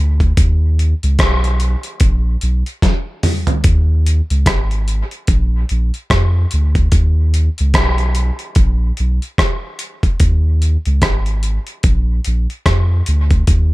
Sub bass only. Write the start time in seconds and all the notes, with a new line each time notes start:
0.00 D2
0.38 D#2
1.03 C#2
1.19 B1
2.01 A#1
2.43 B1
3.65 D#2
4.31 C#2
4.47 G#1
5.29 A#1
5.71 A#1
6.10 F2
6.53 D2
6.93 D#2
7.60 C#2
7.75 B1
8.56 A#1
9.00 B1
10.21 D#2
10.86 C#2
11.03 G#1
11.85 A#1
12.27 A#1
12.67 F2
13.08 D2
13.49 D#2